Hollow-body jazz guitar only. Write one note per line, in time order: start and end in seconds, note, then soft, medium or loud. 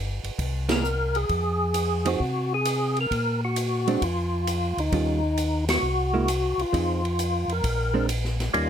0.69 0.82 A#3 medium
0.69 0.83 E4 medium
0.69 0.83 G#4 medium
2.05 2.19 F3 medium
2.05 2.19 C4 medium
2.05 2.19 D#4 medium
2.05 2.19 G#4 medium
3.87 4.00 G#3 medium
3.87 4.00 C4 medium
3.87 4.01 D4 medium
4.93 5.20 D#3 soft
4.93 5.20 G3 medium
4.93 5.20 C#4 soft
4.93 5.20 F4 medium
6.14 6.26 G#3 medium
6.14 6.27 A#3 medium
6.14 6.27 E4 medium
6.73 7.00 F3 soft
6.73 7.01 C4 soft
6.73 7.01 D#4 soft
6.73 7.01 G#4 soft
7.94 8.07 G#3 medium
7.94 8.07 C4 medium
7.94 8.08 D4 medium